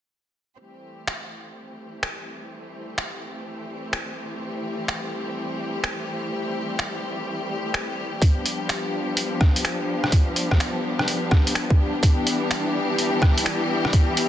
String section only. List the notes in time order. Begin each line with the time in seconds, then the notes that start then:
0.60 E3 G3 A3 C4 G4
8.21 F3 B3 D4
12.03 E3 G3 G4